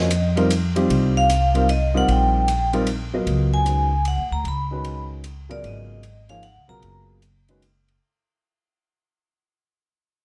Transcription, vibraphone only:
Already playing: D#5
1.17 F5
1.70 D#5
1.97 F#5
2.11 G5
3.54 G#5
4.08 F#5
4.32 A#5
4.48 B5
5.51 D5
5.66 D#5
6.30 F5
6.43 F#5
6.69 A#5

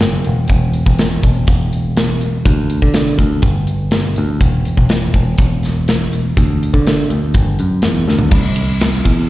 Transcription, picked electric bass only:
0.01 F#1
0.27 E1
0.50 E1
0.86 E1
1.23 E1
1.48 E1
2.45 D2
2.82 D3
3.18 D2
3.42 G1
4.18 D2
4.41 E1
4.77 E1
5.14 E1
5.38 E1
6.37 D2
6.74 D3
7.10 D2
7.35 G1
7.60 F#2
7.85 E2
8.08 D2
8.31 C2
9.05 E2

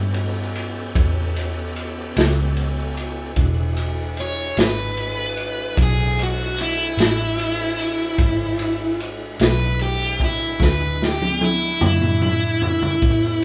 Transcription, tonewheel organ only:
Already playing: B3 C#4 G4 A4
3.36 G#3 D4 E4 F#4
8.18 F3 A3 G4 D#5
8.57 G#3 D4 E4 F#5
13.04 A3 B3 C#4 G4

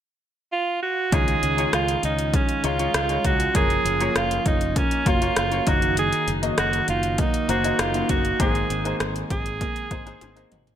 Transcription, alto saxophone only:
0.52 F4
0.83 F#4
1.14 G#4
1.74 F4
2.05 D#4
2.35 C#4
2.65 F4
2.95 F4
3.26 F#4
3.56 G#4
4.17 F4
4.47 D#4
4.77 C#4
5.08 F4
5.38 F4
5.68 F#4
5.99 G#4
6.59 F#4
6.89 F4
7.20 D#4
7.50 F#4
7.81 F4
8.10 F#4
8.41 G#4
9.31 G#4

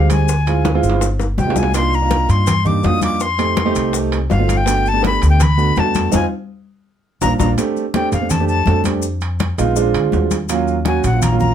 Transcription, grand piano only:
Already playing: G#3 C4 D#4 G4
0.47 G#3 C4 E4 F4
0.75 G#3 C4 E4 F4
1.47 G#3 B3 D4 F4
1.74 A#3 D4 D#4 F4
2.02 A#3 D4 D#4 F4
2.65 A#3 D4 D#4 G4
2.83 A#3 D4 D#4 F4
3.38 A3 C4 D#4 G4
3.65 A3 C4 D#4 G4
4.39 A3 C4 D#4 F4
4.66 A3 B3 D4 F#4
4.93 A3 B3 D4 G4
5.58 A3 B3 D4 F#4
5.77 A3 B3 D4 F#4
6.12 C4 D#4 F4
7.21 A#3 D4 F4
7.39 A#3 D4 F4
7.58 A3 C4 D4 G4
7.94 A3 C4 D4 G4
8.21 A3 C4 D4 G4
8.40 A3 C4 D4 G4
8.67 A3 C4 D4 A4
8.85 A3 C4 D4 G4
9.58 G#3 B3 D#4 F4
9.76 G#3 C4 D4 F4
10.50 F#3 A#3 C#4 F4
10.87 F#3 A#3 C#4 F#4
11.13 F#3 A#3 C#4 F4
11.32 F#3 A#3 C#4 F4

